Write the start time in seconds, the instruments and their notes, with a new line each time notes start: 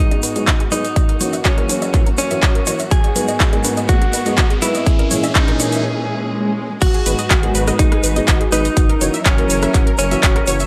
Already playing: string section G#2 G#3 B3 F#4, riser
0.00 clean electric guitar D#4
0.11 synth pluck G#4, closed hi-hat, high bongo, high conga
0.23 synth pluck B4, open hi-hat, shaker
0.36 grand piano G#2 F#3 G#3 B3 D#4 G#4, synth pluck D#5, closed hi-hat, shaker
0.47 synth pluck F#4, kick, clap, closed hi-hat, high bongo, shaker
0.60 synth pluck G#4, closed hi-hat
0.72 grand piano F#3 G#3 B3 D#4 G#4, clean electric guitar D#4, synth pluck B4, open hi-hat, high bongo, low conga, shaker
0.84 synth pluck D#5, closed hi-hat, shaker
0.96 string section F#2 E3 A#3, synth pluck F#4, kick, closed hi-hat, high bongo, shaker
1.09 synth pluck A#4, closed hi-hat
1.20 grand piano E3 F#3 A#3 C#4 F#4, synth pluck C#5, open hi-hat, low conga, shaker
1.33 synth pluck E5, closed hi-hat, high bongo, shaker
1.44 clean electric guitar C#4, synth pluck F#4, kick, clap, closed hi-hat, shaker
1.58 grand piano E3 F#3 A#3 C#4 G#4, synth pluck A#4, closed hi-hat, high bongo
1.69 synth pluck C#5, open hi-hat, high conga, shaker
1.82 synth pluck E5, closed hi-hat, high bongo, shaker
1.94 grand piano E3 F#3 A#3 C#4 F#4, synth pluck F#4, kick, clap, closed hi-hat, shaker
2.06 synth pluck A#4, closed hi-hat, high conga
2.18 clean electric guitar C#4, synth pluck C#5, open hi-hat, high bongo, high conga, shaker
2.31 grand piano E3 F#3 A#3 C#4 F#4, synth pluck E5, closed hi-hat, shaker
2.43 synth pluck F#4, kick, clap, closed hi-hat, high bongo, shaker
2.55 synth pluck A#4, closed hi-hat
2.66 grand piano E3 F#3 A#3 C#4 F#4, synth pluck C#5, open hi-hat, high bongo, shaker
2.79 synth pluck E5, closed hi-hat, shaker
2.91 string section G#2 D#3 B3, synth pluck F#4, clean electric guitar G#4, kick, closed hi-hat, shaker
3.04 synth pluck G#4, closed hi-hat, high bongo
3.16 grand piano G#2 F#3 G#3 B3 D#4 G#4, synth pluck B4, open hi-hat, low conga, shaker
3.28 synth pluck D#5, closed hi-hat, high bongo, shaker
3.40 synth pluck F#4, kick, clap, closed hi-hat, shaker
3.53 grand piano G#2 F#3 G#3 B3 D#4 A#4, synth pluck G#4, closed hi-hat, high bongo
3.64 synth pluck B4, open hi-hat, high conga, shaker
3.77 synth pluck D#5, closed hi-hat, shaker
3.89 grand piano G#2 F#3 G#3 B3 D#4 G#4, clean electric guitar F#4, synth pluck F#4, kick, closed hi-hat, high bongo, shaker
4.02 synth pluck G#4, closed hi-hat, high conga
4.13 synth pluck B4, open hi-hat, high bongo, shaker
4.26 grand piano G#2 F#3 G#3 B3 D#4 G#4, synth pluck D#5, closed hi-hat, shaker
4.37 synth pluck F#4, kick, clap, closed hi-hat, high bongo, shaker
4.50 synth pluck G#4, closed hi-hat
4.62 grand piano F#3 G#3 B3 D#4 G#4, clean electric guitar E4, synth pluck B4, open hi-hat, low conga, shaker
4.75 synth pluck D#5, closed hi-hat, high bongo, shaker
4.86 string section A#2 E3 C#4 G#4, synth pluck G#4, kick, closed hi-hat, shaker
4.99 synth pluck A#4, closed hi-hat, high bongo
5.11 grand piano A#2 E3 G#3 A#3 C#4 G#4, synth pluck C#5, open hi-hat, low conga, shaker
5.23 synth pluck E5, closed hi-hat, high bongo, shaker
5.35 clean electric guitar D#4, synth pluck G#4, kick, clap, closed hi-hat, shaker
5.48 grand piano A#2 E3 G#3 A#3 C#4 A#4, synth pluck A#4, closed hi-hat
5.60 synth pluck C#5, open hi-hat, high bongo, high conga, shaker
5.72 synth pluck E5, closed hi-hat, shaker
5.84 swell
6.81 analog synth bass G#1, string section G#3 B3 D#4 F#4, digital synth lead F#4, synth pluck F#4, clean electric guitar F#4, kick, closed hi-hat, crash, shaker
6.94 synth pluck G#4, closed hi-hat
7.06 analog synth bass G#1, grand piano G#2 F#3 G#3 B3 D#4 G#4, synth pluck B4, open hi-hat, shaker
7.19 synth pluck D#5, closed hi-hat, shaker
7.30 analog synth bass G#1, synth pluck F#4, kick, clap, closed hi-hat, shaker
7.43 grand piano G#2 F#3 G#3 B3 D#4 A#4, synth pluck G#4, closed hi-hat
7.55 analog synth bass G#1, synth pluck B4, open hi-hat, shaker
7.67 synth pluck D#5, cross-stick, closed hi-hat, shaker
7.79 analog synth bass G#1, grand piano G#2 F#3 G#3 B3 D#4 G#4, digital synth lead D#4, clean electric guitar D#4, synth pluck F#4, kick, closed hi-hat, shaker
7.92 synth pluck G#4, cross-stick, closed hi-hat
8.04 analog synth bass G#1, synth pluck B4, open hi-hat, shaker
8.16 grand piano G#2 F#3 G#3 B3 D#4 G#4, synth pluck D#5, closed hi-hat, shaker
8.28 analog synth bass G#1, synth pluck F#4, kick, clap, closed hi-hat, shaker
8.41 synth pluck G#4, closed hi-hat
8.52 analog synth bass G#1, grand piano F#3 G#3 B3 D#4 G#4, digital synth lead D#4, clean electric guitar D#4, synth pluck B4, open hi-hat, shaker
8.65 synth pluck D#5, closed hi-hat, shaker
8.77 analog synth bass F#1, string section E3 F#3 C#4 A#4, synth pluck F#4, kick, closed hi-hat, shaker
8.89 synth pluck A#4, closed hi-hat
9.01 analog synth bass F#1, grand piano E3 F#3 A#3 C#4 F#4, synth pluck C#5, open hi-hat, shaker
9.14 synth pluck E5, closed hi-hat, shaker
9.25 analog synth bass F#1, digital synth lead C#4, clean electric guitar C#4, synth pluck F#4, kick, clap, closed hi-hat, shaker
9.38 grand piano E3 F#3 A#3 C#4 G#4, synth pluck A#4, closed hi-hat
9.50 analog synth bass F#1, synth pluck C#5, open hi-hat, shaker
9.62 synth pluck E5, cross-stick, closed hi-hat, shaker
9.74 analog synth bass F#1, grand piano E3 F#3 A#3 C#4 F#4, synth pluck F#4, kick, clap, closed hi-hat, shaker
9.87 synth pluck A#4, closed hi-hat
9.98 analog synth bass F#1, digital synth lead C#4, clean electric guitar C#4, synth pluck C#5, open hi-hat, shaker
10.11 grand piano E3 F#3 A#3 C#4 F#4, synth pluck E5, closed hi-hat, shaker
10.23 analog synth bass F#1, synth pluck F#4, kick, clap, closed hi-hat, shaker
10.36 synth pluck A#4, cross-stick, closed hi-hat
10.47 analog synth bass F#1, grand piano E3 F#3 A#3 C#4 F#4, synth pluck C#5, open hi-hat, shaker
10.60 synth pluck E5, closed hi-hat, shaker